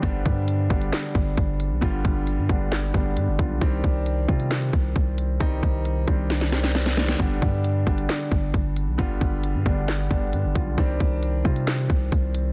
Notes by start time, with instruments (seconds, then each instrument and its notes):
Already playing: harp C5 D5 F5
0.02 808-style bass G1, felt piano D3 G3 B3 D4, kick, closed hi-hat
0.26 808-style bass G2, kick, closed hi-hat
0.48 closed hi-hat
0.69 808-style bass G1, felt piano D3 G3 B3 D4, kick, closed hi-hat
0.81 closed hi-hat
0.93 snare, clap, closed hi-hat
1.15 808-style bass G1, kick
1.37 808-style bass G1, kick, closed hi-hat
1.60 closed hi-hat
1.71 808-style bass B1
1.81 808-style bass G1, felt piano D3 G3 B3 F4, kick, closed hi-hat
2.05 808-style bass G1, kick, closed hi-hat
2.27 closed hi-hat
2.38 808-style bass G2
2.49 808-style bass G1, felt piano D3 G3 B3 D4, kick, closed hi-hat
2.72 snare, clap
2.94 808-style bass G1, felt piano D3 G3 B3 D4, kick, closed hi-hat
3.17 808-style bass G2, closed hi-hat
3.28 808-style bass G1
3.38 808-style bass B1, felt piano D3 G3 B3 F4, kick, closed hi-hat
3.61 808-style bass C2, felt piano D#3 G3 C4 D4, kick, closed hi-hat
3.84 808-style bass C2, kick, closed hi-hat
4.06 closed hi-hat
4.28 808-style bass C3, felt piano D#3 G3 C4 F4, kick, closed hi-hat
4.40 closed hi-hat
4.51 snare, clap, closed hi-hat
4.73 808-style bass C2, kick
4.96 808-style bass C2, kick, closed hi-hat
5.18 closed hi-hat
5.40 808-style bass C2, felt piano D#3 G3 C4 D#4, kick, closed hi-hat
5.63 808-style bass C2, kick, closed hi-hat
5.85 closed hi-hat
6.07 808-style bass C2, felt piano D#3 G3 C4 D4, kick, closed hi-hat
6.30 snare
6.41 snare
6.52 felt piano D#3 G3 C4 D4, snare, closed hi-hat
6.60 snare, closed hi-hat
6.67 closed hi-hat
6.75 snare, closed hi-hat
6.82 snare, closed hi-hat
6.90 closed hi-hat
6.97 felt piano D#3 G3 C4 D4, snare, open hi-hat
7.08 snare
7.19 808-style bass G1, felt piano D3 G3 B3 D4, kick, closed hi-hat
7.42 808-style bass G2, kick, closed hi-hat
7.64 closed hi-hat
7.86 808-style bass G1, felt piano D3 G3 B3 D4, kick, closed hi-hat
7.98 closed hi-hat
8.09 snare, clap, closed hi-hat
8.32 808-style bass G1, kick
8.54 808-style bass G1, kick, closed hi-hat
8.76 closed hi-hat
8.88 808-style bass B1
8.98 808-style bass G1, felt piano D3 G3 B3 F4, kick, closed hi-hat
9.21 808-style bass G1, kick, closed hi-hat
9.44 closed hi-hat
9.55 808-style bass G2
9.65 808-style bass G1, felt piano D3 G3 B3 D4, kick, closed hi-hat
9.88 snare, clap
10.10 808-style bass G1, felt piano D3 G3 B3 D4, kick, closed hi-hat
10.33 808-style bass G2, closed hi-hat
10.44 808-style bass G1
10.55 808-style bass B1, felt piano D3 G3 B3 F4, kick, closed hi-hat
10.77 808-style bass C2, felt piano D#3 G3 C4 D4, kick, closed hi-hat
11.00 808-style bass C2, kick, closed hi-hat
11.23 closed hi-hat
11.44 808-style bass C3, felt piano D#3 G3 C4 F4, kick, closed hi-hat
11.56 closed hi-hat
11.67 snare, clap, closed hi-hat
11.90 808-style bass C2, kick
12.12 808-style bass C2, kick, closed hi-hat
12.35 closed hi-hat